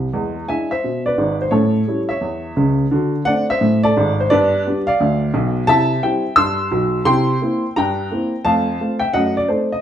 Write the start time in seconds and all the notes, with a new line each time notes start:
0.13 E2 G#3
0.48 G#3 D4 E4 E5 G#5
0.71 C5 E5
0.84 B2
1.06 B4 D5
1.18 G#1 G#2
1.42 C5
1.51 A2 C#4 A4 C#5
1.88 G3 C#4 E4
2.09 C#5 E5
2.21 E2
2.56 C#2 C#3
2.91 D3 F#4
3.25 A3 C4 D4 D5 F#5
3.50 C5 E5
3.61 A2
3.84 A4 D5
3.97 G#1 G#2
4.20 C5
4.30 G2 B3 B4 D5
4.67 G3 B3 D4
4.87 D5 F5
5.00 D2
5.34 B1 B2
5.67 C3 E4 E5 A5
6.03 G3 C4 E4 E5 G5
6.36 G2 C6 E6
6.71 B1 B2
7.05 C3 E4 G5 C6
7.42 A#3 C4 E4
7.76 G2 G5 A#5
8.11 A#3 C4 E4
8.45 F2 A3 F5 A5
8.80 A3 C4 F4
8.99 E5 G5
9.13 F#2 A3 D#5 F#5
9.37 D5
9.48 A3 C4 D#4 A4 C5
9.72 D#5